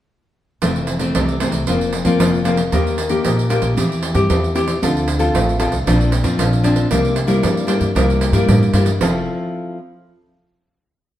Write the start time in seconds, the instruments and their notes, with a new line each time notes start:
0.62 upright bass F1, nylon-string guitar F2 E3 A3 C4, pandeiro
0.76 pandeiro
0.87 pandeiro
0.99 nylon-string guitar E3 A3 C4, pandeiro
1.15 upright bass C2, nylon-string guitar C3, pandeiro
1.29 pandeiro
1.40 nylon-string guitar E3 A3 C4, pandeiro
1.52 upright bass C2, pandeiro
1.67 upright bass F1, nylon-string guitar F2 F3 A#3 C4, pandeiro
1.81 pandeiro
1.93 pandeiro
2.05 upright bass F2, nylon-string guitar F3 A#3 C4, pandeiro
2.19 upright bass F1, nylon-string guitar F2, pandeiro
2.34 pandeiro
2.44 nylon-string guitar F3 A#3 C4, pandeiro
2.57 pandeiro
2.72 upright bass D#2, nylon-string guitar D#3 A#3 D#4 G4, pandeiro
2.87 pandeiro
2.98 pandeiro
3.09 nylon-string guitar A#3 D#4 G4, pandeiro
3.24 upright bass A#1, nylon-string guitar A#2, pandeiro
3.39 pandeiro
3.50 nylon-string guitar A#3 D#4 G4, pandeiro
3.62 upright bass A#1, pandeiro
3.77 upright bass E2, nylon-string guitar E3 C4 E4 G4, pandeiro
3.92 pandeiro
4.03 pandeiro
4.14 upright bass G2, nylon-string guitar C4 E4 G4, pandeiro
4.30 upright bass E2, nylon-string guitar E3, pandeiro
4.44 pandeiro
4.55 nylon-string guitar C4 E4 G4, pandeiro
4.68 pandeiro
4.82 upright bass D2, nylon-string guitar D3 C4 F4 A4, pandeiro
4.97 pandeiro
5.08 pandeiro
5.19 nylon-string guitar C4 F4 A4, pandeiro
5.34 upright bass A1, nylon-string guitar A2, pandeiro
5.49 pandeiro
5.59 nylon-string guitar C4 F4 A4, pandeiro
5.72 upright bass C2, pandeiro
5.86 upright bass A#1, nylon-string guitar A#2 F3 C4 D4, pandeiro
6.01 pandeiro
6.12 pandeiro
6.23 upright bass F2, nylon-string guitar F3 C4 D4, pandeiro
6.38 upright bass A#1, nylon-string guitar F3, pandeiro
6.53 pandeiro
6.63 nylon-string guitar F3 C4 D4, pandeiro
6.76 pandeiro
6.90 upright bass C2, nylon-string guitar C3 G3 A#3 E4, pandeiro
7.05 pandeiro
7.16 pandeiro
7.27 nylon-string guitar G3 A#3 E4, pandeiro
7.42 nylon-string guitar G2, upright bass G2, pandeiro
7.57 pandeiro
7.67 nylon-string guitar G3 A#3 E4, pandeiro
7.81 upright bass G2, pandeiro
7.95 upright bass C2, nylon-string guitar C3 G3 A#3 E4, pandeiro
8.10 pandeiro
8.21 pandeiro
8.32 upright bass G2, nylon-string guitar G3 A#3 E4, pandeiro
8.48 nylon-string guitar G2, upright bass A2, pandeiro
8.62 pandeiro
8.73 upright bass G2, nylon-string guitar G3 A#3 E4, pandeiro
8.86 pandeiro
9.01 upright bass F1, nylon-string guitar F3 C4 E4 A4, pandeiro